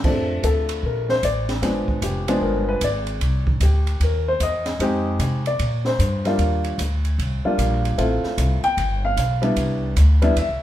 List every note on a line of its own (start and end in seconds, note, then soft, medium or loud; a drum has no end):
0.04 0.43 F2 medium
0.04 1.15 F3 soft
0.04 1.15 A3 medium
0.04 1.15 C4 medium
0.04 1.15 D4 medium
0.04 kick medium
0.04 crash medium
0.43 0.82 D2 medium
0.43 0.81 A4 medium
0.43 kick soft
0.43 hi-hat pedal medium
0.43 ride medium
0.69 ride medium
0.83 1.22 A#1 medium
0.83 1.10 A#4 medium
0.83 kick soft
1.09 1.23 C5 medium
1.09 snare soft
1.23 1.62 A1 medium
1.23 1.85 D5 medium
1.23 kick soft
1.23 hi-hat pedal medium
1.23 ride medium
1.49 snare medium
1.49 ride soft
1.62 1.86 G1 medium
1.62 2.23 F3 medium
1.62 2.23 G#3 soft
1.62 2.23 B3 soft
1.62 2.23 D4 medium
1.62 kick soft
1.62 snare soft
1.62 ride medium
1.88 muted upright bass stroke soft
1.88 kick medium
2.02 2.41 F1 medium
2.02 2.40 G4 medium
2.02 kick soft
2.02 hi-hat pedal medium
2.02 ride medium
2.28 2.79 F3 medium
2.28 2.79 G#3 medium
2.28 2.79 B3 medium
2.28 2.79 D4 medium
2.28 ride medium
2.41 2.80 G1 medium
2.41 2.67 A#4 medium
2.41 kick soft
2.69 2.82 B4 medium
2.81 3.20 G#1 medium
2.81 3.44 D5 medium
2.81 kick soft
2.81 hi-hat pedal medium
2.81 ride medium
3.07 ride soft
3.21 3.60 C2 medium
3.21 kick soft
3.21 ride medium
3.47 kick medium
3.60 3.99 D2 medium
3.60 3.99 G4 soft
3.60 kick soft
3.60 hi-hat pedal medium
3.60 ride medium
3.87 ride soft
4.00 4.39 D#2 medium
4.00 4.27 A#4 medium
4.00 kick soft
4.00 ride medium
4.28 4.41 C5 medium
4.40 4.79 E2 medium
4.40 5.03 D#5 medium
4.40 kick soft
4.40 hi-hat pedal medium
4.40 ride medium
4.66 snare soft
4.66 ride soft
4.79 5.18 F2 medium
4.79 5.41 G#3 medium
4.79 5.41 C4 medium
4.79 5.41 D#4 medium
4.79 5.41 G4 medium
4.79 kick soft
4.79 ride medium
5.19 5.58 C3 medium
5.19 kick soft
5.19 hi-hat pedal medium
5.19 ride medium
5.46 5.83 D5 medium
5.46 ride soft
5.59 5.98 A#2 medium
5.59 kick soft
5.59 ride medium
5.85 6.23 C5 medium
5.85 snare medium
5.99 6.38 G2 loud
5.99 kick soft
5.99 hi-hat pedal medium
5.99 ride medium
6.25 6.76 G3 medium
6.25 6.76 A#3 medium
6.25 6.77 D4 medium
6.25 6.77 F4 medium
6.25 snare soft
6.25 ride soft
6.38 6.77 D#2 medium
6.38 kick soft
6.38 ride medium
6.64 ride soft
6.78 7.17 D2 medium
6.78 kick soft
6.78 hi-hat pedal medium
6.78 ride medium
7.05 ride soft
7.18 7.42 C2 medium
7.18 kick soft
7.18 ride medium
7.45 7.96 G3 medium
7.45 7.95 A#3 medium
7.45 7.96 D4 medium
7.45 7.96 F4 medium
7.45 muted upright bass stroke soft
7.58 7.97 A#1 medium
7.58 kick soft
7.58 hi-hat pedal soft
7.58 ride medium
7.85 ride soft
7.97 8.22 A1 medium
7.97 8.58 A3 medium
7.97 8.58 C4 medium
7.97 8.58 E4 medium
7.97 8.58 F4 medium
7.97 kick soft
7.97 ride medium
8.24 muted upright bass stroke soft
8.24 snare soft
8.38 8.61 C2 medium
8.38 kick soft
8.38 hi-hat pedal medium
8.38 ride medium
8.63 9.00 G5 loud
8.63 muted upright bass stroke soft
8.63 ride soft
8.77 9.16 G1 medium
8.77 kick soft
8.77 ride medium
9.05 9.41 F5 medium
9.17 9.55 B1 medium
9.17 kick soft
9.17 hi-hat pedal medium
9.17 ride medium
9.42 9.93 G3 medium
9.42 9.93 B3 medium
9.42 9.93 D4 medium
9.42 9.93 E4 medium
9.42 ride soft
9.56 9.95 C2 medium
9.56 kick soft
9.56 ride medium
9.96 10.35 D2 medium
9.96 kick soft
9.96 hi-hat pedal medium
9.96 ride medium
10.22 10.34 G3 medium
10.22 10.34 B3 medium
10.22 10.35 D4 medium
10.22 10.35 E4 medium
10.22 ride soft
10.36 10.50 E2 medium
10.36 10.62 E5 medium
10.36 kick soft
10.36 ride medium
10.49 10.62 C2 medium